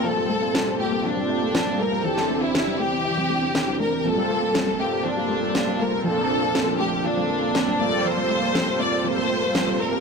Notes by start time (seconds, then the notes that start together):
Already playing: G3 A#3 C4 F4 G4 A4 C5
0.04 F3 A4
0.17 G3
0.29 A3
0.42 A#3
0.55 F3, snare
0.67 G3
0.80 A3 G4
0.92 A#3
1.04 F3 D4
1.17 G3
1.30 A3
1.42 A#3
1.55 F3, snare
1.67 G3
1.80 A3 A#4
1.92 A#3
2.03 E3 C4 D4 E4 G4 A4 D5
2.17 G3, snare
2.30 A3
2.42 C4 E4
2.55 E3, snare
2.67 G3
2.79 A3 G4
2.92 C4
3.05 E3
3.18 G3
3.30 A3
3.43 C4
3.55 E3, snare
3.68 G3
3.80 A3 A#4
3.93 C4
4.04 F3 G3 A#3 C4 F4 G4 A4 C5
4.18 G3
4.30 A3
4.42 A#3
4.55 F3, snare
4.67 G3
4.80 A3 G4
4.92 A#3
5.05 F3 D4
5.17 G3
5.30 A3
5.42 A#3
5.55 F3, snare
5.67 G3
5.80 A3 A#4
5.92 A#3
6.04 F3 A#3 C4 D4 A4 C5
6.17 G3
6.30 A3
6.43 A#3
6.55 F3, snare
6.67 G3
6.80 A3 G4
6.92 A#3
7.05 F3 D4
7.17 G3
7.30 A3
7.42 A#3
7.55 F3, snare
7.68 G3
7.78 G3 A3 A#3 C4 F4 G4 A4 D5
7.92 A#3
8.05 F3 C5
8.17 G3
8.30 A3
8.42 A#3
8.55 F3, snare
8.67 G3
8.80 A3 D5
8.92 A#3
9.04 F3 C5
9.17 G3
9.29 A3
9.42 A#3
9.55 F3, snare
9.67 G3
9.80 A3 A#4
9.92 A#3